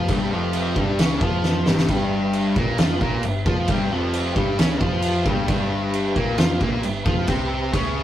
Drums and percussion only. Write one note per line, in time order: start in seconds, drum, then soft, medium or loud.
0.08 kick loud
0.08 crash medium
0.53 crash medium
0.76 kick loud
0.99 snare loud
0.99 crash medium
1.21 kick loud
1.43 snare medium
1.66 snare loud
1.78 snare loud
1.88 kick loud
1.88 crash medium
2.33 crash medium
2.56 kick loud
2.78 snare loud
2.78 crash medium
3.01 kick loud
3.23 crash medium
3.46 kick loud
3.68 kick loud
3.68 crash medium
4.13 crash medium
4.36 kick loud
4.59 snare loud
4.59 crash medium
4.81 kick loud
5.02 crash medium
5.26 kick loud
5.48 kick loud
5.48 crash medium
5.94 crash medium
6.16 kick loud
6.38 snare loud
6.38 crash medium
6.61 kick loud
6.83 crash medium
7.06 kick loud
7.27 kick loud
7.27 crash medium
7.74 kick loud
7.74 crash medium